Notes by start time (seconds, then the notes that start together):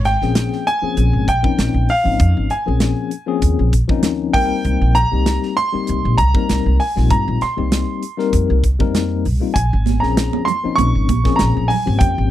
Already playing: G#1
0.05 G5, snare, closed hi-hat
0.21 A#1 F3 A#3 C4 C#4 G#4, snare
0.35 snare, closed hi-hat
0.52 snare
0.67 G#5, closed hi-hat
0.82 F3 A#3 C4 C#4 G#4, muted upright bass stroke
0.97 A#1, closed hi-hat
1.13 G#1
1.28 A#1 G5, kick, closed hi-hat
1.43 F3 A#3 C4 C#4 D#4, kick
1.58 A#1, snare, closed hi-hat
1.74 A#1
1.89 F5, open hi-hat
2.03 G#1 F3 A#3 C4 C#4 D#4
2.19 F2, kick, closed hi-hat
2.37 G#1
2.50 G#5, muted upright bass stroke, closed hi-hat
2.66 A#1 F3 A#3 C4 C#4 G#4
2.80 snare, closed hi-hat
3.11 closed hi-hat
3.26 F3 A#3 C4 C#4 G#4
3.42 D#2, kick, closed hi-hat
3.59 A#1
3.73 kick, closed hi-hat
3.88 D#2 F3 A#3 C4 C#4 D#4, kick
4.03 snare, closed hi-hat
4.33 C2 G3 A#3 C4 D#4 A#4 G5, kick, open hi-hat
4.65 C2, closed hi-hat
4.82 A#1
4.95 A#5, closed hi-hat
5.12 C2 G3 A#3 C4 D#4 G4
5.26 snare, closed hi-hat
5.43 snare
5.57 C6, closed hi-hat
5.72 G3 A#3 C4 D#4 G4, muted upright bass stroke
5.87 C2, closed hi-hat
6.05 A#1
6.18 C2 A#5, kick, closed hi-hat
6.34 G3 A#3 C4 D#4 A#4, kick
6.49 C2, snare, closed hi-hat
6.66 C2
6.80 G#5, open hi-hat
6.96 A#1 G3 A#3 C4 D#4 F4, snare
7.10 G2 A#5, kick, closed hi-hat
7.28 A#1
7.41 C6, muted upright bass stroke, snare, closed hi-hat
7.56 C2 G3 A#3 C4 D#4 G4
7.72 snare, closed hi-hat
8.03 closed hi-hat
8.17 G3 A#3 C4 D#4 A#4, snare
8.33 F2, kick, closed hi-hat
8.50 C2
8.64 kick, closed hi-hat
8.79 F2 G3 A#3 C4 D#4 A#4, kick
8.95 snare, closed hi-hat
9.25 C2, open hi-hat
9.40 G3 A#3 C4 D#4 F4
9.54 A#1 G#5, kick, closed hi-hat
9.73 G#1
9.86 snare, closed hi-hat, high conga
10.00 A#1 F3 A#3 C4 C#4 G#4 A#5, snare
10.17 snare, closed hi-hat
10.33 high conga
10.45 C6, closed hi-hat, low conga
10.63 F3 A#3 C4 C#4 D#4, muted upright bass stroke
10.76 A#1 C#6, closed hi-hat, high conga
10.95 G#1
11.09 A#1, kick, closed hi-hat, high conga
11.24 F3 A#3 C4 C#4 G#4, kick, snare
11.36 A#5, snare, closed hi-hat
11.41 A#1
11.57 A#1
11.68 G#5, open hi-hat, low conga
11.86 G#1 F3 A#3 C4 C#4 G4
11.99 F2 G5, kick, closed hi-hat
12.18 G#1